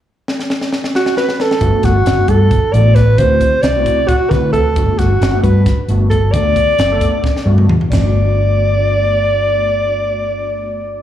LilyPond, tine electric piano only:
\new Staff \with { instrumentName = "Tine electric piano" } { \time 7/8 \key g \major \tempo 4 = 133 r2. r8 | <a b d' fis'>8. r8 <a b d' fis'>8. r8 <a b d' fis'>8. r16 | <a c' e' fis'>8. r8 <a c' e' fis'>8. r8 <a c' e' fis'>8. r16 | <a b d' fis'>8. r8 <a b d' fis'>8. r8 <a b d' fis'>8. r16 |
<a b d' fis'>8. r8 <a b d' a'>8. r8 <a b d' fis'>8. r16 | <a b d' fis'>2.~ <a b d' fis'>8~ | <a b d' fis'>2.~ <a b d' fis'>8 | }